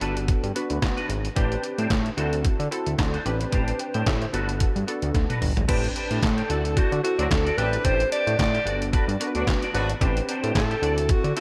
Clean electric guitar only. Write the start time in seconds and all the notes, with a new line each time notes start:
0.01 D4 F#4 B4
0.16 muted clean electric guitar stroke
0.28 muted clean electric guitar stroke
0.43 muted clean electric guitar stroke
0.70 muted clean electric guitar stroke
0.82 muted clean electric guitar stroke
0.97 D4 F#4 B4
1.09 muted clean electric guitar stroke
1.24 muted clean electric guitar stroke
1.36 D4 G4 C5
1.63 muted clean electric guitar stroke
1.78 D4 G4 C5
1.90 muted clean electric guitar stroke
2.06 muted clean electric guitar stroke
2.17 D4 F#4 C5
2.33 muted clean electric guitar stroke
2.45 muted clean electric guitar stroke
2.59 muted clean electric guitar stroke
2.86 muted clean electric guitar stroke
3.13 D4 F#4 C5
3.25 muted clean electric guitar stroke
3.40 muted clean electric guitar stroke
3.52 D4 G4 C5
3.79 muted clean electric guitar stroke
3.94 D4 G4 C5
4.06 muted clean electric guitar stroke
4.21 muted clean electric guitar stroke
4.33 D4 F#4 B4
4.49 muted clean electric guitar stroke
4.61 muted clean electric guitar stroke
4.76 muted clean electric guitar stroke
5.03 muted clean electric guitar stroke
5.14 muted clean electric guitar stroke
5.30 D4 F#4 B4
5.42 muted clean electric guitar stroke
5.57 muted clean electric guitar stroke
5.68 D4 G4 C5
5.95 D4 G4 C5
6.10 D4 G4 C5
6.37 D4 G4 C5
6.49 D4 F#4 D5
6.65 muted clean electric guitar stroke
6.76 D4 F#4 C5
6.92 muted clean electric guitar stroke
7.03 muted clean electric guitar stroke
7.18 D4 F#4 D5
7.30 muted clean electric guitar stroke
7.45 D4 F#4 D5
7.57 D4 G4 C5
7.73 muted clean electric guitar stroke
7.84 D4 G4 C5
8.11 D4 G4 C5
8.26 D4 G4 C5
8.53 D4 G4 C5
8.65 D4 F#4 D5
8.80 muted clean electric guitar stroke
8.92 D4 F#4 B4
9.08 muted clean electric guitar stroke
9.20 muted clean electric guitar stroke
9.35 D4 F#4 D5
9.46 muted clean electric guitar stroke
9.61 D4 F#4 D5
9.74 D4 F#4 B4
9.89 muted clean electric guitar stroke
10.00 D4 G4 C5
10.28 D4 G4 C5
10.43 D4 G4 C5
10.70 D4 G4 C5
10.82 D4 F#4 D5
10.97 muted clean electric guitar stroke
11.09 muted clean electric guitar stroke
11.24 muted clean electric guitar stroke
11.35 D4 F#4 C5